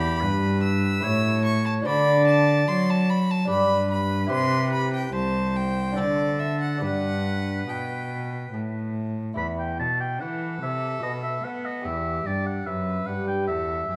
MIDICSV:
0, 0, Header, 1, 5, 480
1, 0, Start_track
1, 0, Key_signature, 1, "major"
1, 0, Tempo, 821918
1, 1086, Time_signature, 3, 2, 24, 8
1, 3482, Tempo, 853485
1, 5402, Tempo, 817439
1, 5405, Key_signature, 1, "minor"
1, 8094, End_track
2, 0, Start_track
2, 0, Title_t, "Violin"
2, 0, Program_c, 0, 40
2, 0, Note_on_c, 0, 83, 127
2, 358, Note_off_c, 0, 83, 0
2, 369, Note_on_c, 0, 88, 127
2, 837, Note_off_c, 0, 88, 0
2, 849, Note_on_c, 0, 85, 115
2, 965, Note_off_c, 0, 85, 0
2, 968, Note_on_c, 0, 81, 107
2, 1015, Note_off_c, 0, 81, 0
2, 1084, Note_on_c, 0, 83, 126
2, 1319, Note_off_c, 0, 83, 0
2, 1327, Note_on_c, 0, 81, 127
2, 1563, Note_on_c, 0, 84, 122
2, 1572, Note_off_c, 0, 81, 0
2, 1690, Note_on_c, 0, 81, 116
2, 1699, Note_off_c, 0, 84, 0
2, 1808, Note_on_c, 0, 83, 118
2, 1817, Note_off_c, 0, 81, 0
2, 1929, Note_on_c, 0, 81, 117
2, 1938, Note_off_c, 0, 83, 0
2, 2040, Note_off_c, 0, 81, 0
2, 2044, Note_on_c, 0, 83, 123
2, 2275, Note_off_c, 0, 83, 0
2, 2283, Note_on_c, 0, 83, 113
2, 2516, Note_off_c, 0, 83, 0
2, 2523, Note_on_c, 0, 84, 118
2, 2756, Note_off_c, 0, 84, 0
2, 2760, Note_on_c, 0, 83, 115
2, 2877, Note_off_c, 0, 83, 0
2, 2884, Note_on_c, 0, 79, 101
2, 2999, Note_off_c, 0, 79, 0
2, 3005, Note_on_c, 0, 81, 103
2, 3246, Note_on_c, 0, 79, 103
2, 3255, Note_off_c, 0, 81, 0
2, 3486, Note_on_c, 0, 74, 101
2, 3494, Note_off_c, 0, 79, 0
2, 3725, Note_on_c, 0, 76, 94
2, 3734, Note_off_c, 0, 74, 0
2, 3843, Note_off_c, 0, 76, 0
2, 3846, Note_on_c, 0, 78, 89
2, 3964, Note_off_c, 0, 78, 0
2, 3971, Note_on_c, 0, 78, 109
2, 4453, Note_on_c, 0, 79, 83
2, 4462, Note_off_c, 0, 78, 0
2, 4932, Note_off_c, 0, 79, 0
2, 5892, Note_on_c, 0, 69, 84
2, 6854, Note_on_c, 0, 67, 62
2, 6863, Note_off_c, 0, 69, 0
2, 7330, Note_on_c, 0, 71, 73
2, 7338, Note_off_c, 0, 67, 0
2, 7809, Note_on_c, 0, 69, 68
2, 7818, Note_off_c, 0, 71, 0
2, 8047, Note_off_c, 0, 69, 0
2, 8054, Note_on_c, 0, 67, 61
2, 8094, Note_off_c, 0, 67, 0
2, 8094, End_track
3, 0, Start_track
3, 0, Title_t, "Oboe"
3, 0, Program_c, 1, 68
3, 0, Note_on_c, 1, 67, 107
3, 119, Note_on_c, 1, 71, 100
3, 128, Note_off_c, 1, 67, 0
3, 606, Note_on_c, 1, 73, 109
3, 615, Note_off_c, 1, 71, 0
3, 1083, Note_off_c, 1, 73, 0
3, 1086, Note_on_c, 1, 74, 121
3, 1863, Note_off_c, 1, 74, 0
3, 2039, Note_on_c, 1, 71, 108
3, 2974, Note_off_c, 1, 71, 0
3, 2996, Note_on_c, 1, 72, 94
3, 3474, Note_off_c, 1, 72, 0
3, 3481, Note_on_c, 1, 69, 92
3, 3953, Note_off_c, 1, 69, 0
3, 3964, Note_on_c, 1, 71, 91
3, 5145, Note_off_c, 1, 71, 0
3, 5399, Note_on_c, 1, 83, 99
3, 5455, Note_off_c, 1, 83, 0
3, 5527, Note_on_c, 1, 79, 77
3, 5644, Note_off_c, 1, 79, 0
3, 5647, Note_on_c, 1, 81, 93
3, 5766, Note_off_c, 1, 81, 0
3, 5770, Note_on_c, 1, 79, 81
3, 5885, Note_off_c, 1, 79, 0
3, 5889, Note_on_c, 1, 78, 93
3, 6125, Note_off_c, 1, 78, 0
3, 6135, Note_on_c, 1, 76, 89
3, 6369, Note_off_c, 1, 76, 0
3, 6373, Note_on_c, 1, 75, 91
3, 6427, Note_off_c, 1, 75, 0
3, 6491, Note_on_c, 1, 76, 90
3, 6614, Note_on_c, 1, 78, 80
3, 6623, Note_off_c, 1, 76, 0
3, 6737, Note_on_c, 1, 75, 82
3, 6745, Note_off_c, 1, 78, 0
3, 6855, Note_on_c, 1, 76, 90
3, 6864, Note_off_c, 1, 75, 0
3, 7097, Note_on_c, 1, 74, 87
3, 7105, Note_off_c, 1, 76, 0
3, 7212, Note_off_c, 1, 74, 0
3, 7216, Note_on_c, 1, 78, 85
3, 7334, Note_on_c, 1, 76, 84
3, 7343, Note_off_c, 1, 78, 0
3, 7569, Note_on_c, 1, 78, 87
3, 7577, Note_off_c, 1, 76, 0
3, 7689, Note_off_c, 1, 78, 0
3, 7692, Note_on_c, 1, 79, 86
3, 7804, Note_off_c, 1, 79, 0
3, 7808, Note_on_c, 1, 76, 98
3, 8094, Note_off_c, 1, 76, 0
3, 8094, End_track
4, 0, Start_track
4, 0, Title_t, "Lute"
4, 0, Program_c, 2, 24
4, 0, Note_on_c, 2, 40, 72
4, 0, Note_on_c, 2, 64, 70
4, 0, Note_on_c, 2, 67, 70
4, 0, Note_on_c, 2, 71, 66
4, 104, Note_off_c, 2, 40, 0
4, 128, Note_on_c, 2, 43, 82
4, 577, Note_off_c, 2, 64, 0
4, 580, Note_off_c, 2, 67, 0
4, 584, Note_off_c, 2, 71, 0
4, 587, Note_on_c, 2, 64, 70
4, 589, Note_off_c, 2, 43, 0
4, 596, Note_on_c, 2, 67, 67
4, 603, Note_off_c, 2, 67, 0
4, 605, Note_on_c, 2, 73, 69
4, 612, Note_on_c, 2, 45, 76
4, 1059, Note_off_c, 2, 64, 0
4, 1062, Note_on_c, 2, 62, 71
4, 1063, Note_off_c, 2, 45, 0
4, 1068, Note_off_c, 2, 73, 0
4, 1070, Note_on_c, 2, 66, 70
4, 1079, Note_on_c, 2, 72, 72
4, 1088, Note_on_c, 2, 50, 77
4, 1542, Note_off_c, 2, 50, 0
4, 1566, Note_on_c, 2, 54, 76
4, 2006, Note_off_c, 2, 62, 0
4, 2009, Note_off_c, 2, 66, 0
4, 2014, Note_off_c, 2, 72, 0
4, 2015, Note_on_c, 2, 62, 66
4, 2018, Note_off_c, 2, 54, 0
4, 2025, Note_on_c, 2, 67, 69
4, 2032, Note_on_c, 2, 74, 66
4, 2043, Note_on_c, 2, 43, 77
4, 2489, Note_off_c, 2, 62, 0
4, 2491, Note_on_c, 2, 64, 70
4, 2492, Note_off_c, 2, 67, 0
4, 2496, Note_off_c, 2, 43, 0
4, 2499, Note_on_c, 2, 67, 66
4, 2500, Note_off_c, 2, 74, 0
4, 2508, Note_on_c, 2, 72, 68
4, 2518, Note_on_c, 2, 48, 74
4, 2975, Note_off_c, 2, 48, 0
4, 3448, Note_off_c, 2, 64, 0
4, 3451, Note_off_c, 2, 67, 0
4, 3456, Note_off_c, 2, 72, 0
4, 3458, Note_on_c, 2, 62, 62
4, 3468, Note_on_c, 2, 66, 61
4, 3476, Note_on_c, 2, 72, 61
4, 3486, Note_on_c, 2, 50, 64
4, 3934, Note_off_c, 2, 62, 0
4, 3938, Note_off_c, 2, 66, 0
4, 3940, Note_on_c, 2, 62, 58
4, 3943, Note_off_c, 2, 50, 0
4, 3946, Note_off_c, 2, 72, 0
4, 3951, Note_on_c, 2, 67, 57
4, 3956, Note_off_c, 2, 67, 0
4, 3958, Note_on_c, 2, 71, 60
4, 3967, Note_on_c, 2, 43, 65
4, 4424, Note_off_c, 2, 43, 0
4, 4442, Note_on_c, 2, 47, 64
4, 4893, Note_off_c, 2, 62, 0
4, 4904, Note_off_c, 2, 47, 0
4, 4929, Note_on_c, 2, 45, 65
4, 5379, Note_off_c, 2, 71, 0
4, 5382, Note_on_c, 2, 64, 55
4, 5383, Note_off_c, 2, 45, 0
4, 5390, Note_on_c, 2, 67, 54
4, 5397, Note_off_c, 2, 67, 0
4, 5399, Note_on_c, 2, 71, 53
4, 5407, Note_on_c, 2, 40, 63
4, 5626, Note_off_c, 2, 40, 0
4, 5653, Note_on_c, 2, 47, 58
4, 5869, Note_off_c, 2, 47, 0
4, 5896, Note_on_c, 2, 52, 60
4, 6110, Note_off_c, 2, 52, 0
4, 6138, Note_on_c, 2, 48, 60
4, 6337, Note_off_c, 2, 64, 0
4, 6345, Note_off_c, 2, 71, 0
4, 6352, Note_off_c, 2, 48, 0
4, 6353, Note_on_c, 2, 66, 51
4, 6364, Note_on_c, 2, 69, 51
4, 6370, Note_off_c, 2, 69, 0
4, 6373, Note_on_c, 2, 71, 52
4, 6379, Note_on_c, 2, 47, 57
4, 6593, Note_off_c, 2, 47, 0
4, 6618, Note_on_c, 2, 59, 59
4, 6830, Note_off_c, 2, 66, 0
4, 6833, Note_off_c, 2, 59, 0
4, 6833, Note_on_c, 2, 67, 51
4, 6834, Note_off_c, 2, 71, 0
4, 6841, Note_on_c, 2, 71, 52
4, 6859, Note_on_c, 2, 40, 60
4, 7072, Note_off_c, 2, 40, 0
4, 7099, Note_on_c, 2, 43, 58
4, 7311, Note_off_c, 2, 43, 0
4, 7337, Note_on_c, 2, 42, 60
4, 7549, Note_off_c, 2, 42, 0
4, 7575, Note_on_c, 2, 43, 55
4, 7788, Note_off_c, 2, 43, 0
4, 7810, Note_on_c, 2, 40, 54
4, 8024, Note_off_c, 2, 40, 0
4, 8052, Note_on_c, 2, 42, 54
4, 8094, Note_off_c, 2, 42, 0
4, 8094, Note_off_c, 2, 67, 0
4, 8094, Note_off_c, 2, 71, 0
4, 8094, End_track
5, 0, Start_track
5, 0, Title_t, "Cello"
5, 0, Program_c, 3, 42
5, 0, Note_on_c, 3, 40, 103
5, 130, Note_on_c, 3, 43, 97
5, 139, Note_off_c, 3, 40, 0
5, 612, Note_off_c, 3, 43, 0
5, 615, Note_on_c, 3, 45, 100
5, 1078, Note_off_c, 3, 45, 0
5, 1093, Note_on_c, 3, 50, 99
5, 1558, Note_off_c, 3, 50, 0
5, 1569, Note_on_c, 3, 54, 97
5, 2034, Note_off_c, 3, 54, 0
5, 2045, Note_on_c, 3, 43, 89
5, 2511, Note_off_c, 3, 43, 0
5, 2523, Note_on_c, 3, 48, 100
5, 2992, Note_off_c, 3, 48, 0
5, 3001, Note_on_c, 3, 36, 92
5, 3486, Note_on_c, 3, 50, 82
5, 3495, Note_off_c, 3, 36, 0
5, 3966, Note_on_c, 3, 43, 80
5, 3975, Note_off_c, 3, 50, 0
5, 4442, Note_off_c, 3, 43, 0
5, 4445, Note_on_c, 3, 47, 82
5, 4918, Note_off_c, 3, 47, 0
5, 4927, Note_on_c, 3, 45, 76
5, 5395, Note_off_c, 3, 45, 0
5, 5407, Note_on_c, 3, 40, 77
5, 5650, Note_on_c, 3, 47, 70
5, 5659, Note_off_c, 3, 40, 0
5, 5892, Note_on_c, 3, 52, 73
5, 5901, Note_off_c, 3, 47, 0
5, 6127, Note_off_c, 3, 52, 0
5, 6130, Note_on_c, 3, 48, 68
5, 6367, Note_off_c, 3, 48, 0
5, 6374, Note_on_c, 3, 47, 68
5, 6609, Note_off_c, 3, 47, 0
5, 6613, Note_on_c, 3, 59, 70
5, 6856, Note_on_c, 3, 40, 75
5, 6865, Note_off_c, 3, 59, 0
5, 7091, Note_off_c, 3, 40, 0
5, 7094, Note_on_c, 3, 43, 67
5, 7327, Note_off_c, 3, 43, 0
5, 7338, Note_on_c, 3, 42, 71
5, 7568, Note_off_c, 3, 42, 0
5, 7572, Note_on_c, 3, 43, 67
5, 7813, Note_on_c, 3, 40, 71
5, 7821, Note_off_c, 3, 43, 0
5, 8047, Note_off_c, 3, 40, 0
5, 8050, Note_on_c, 3, 42, 68
5, 8094, Note_off_c, 3, 42, 0
5, 8094, End_track
0, 0, End_of_file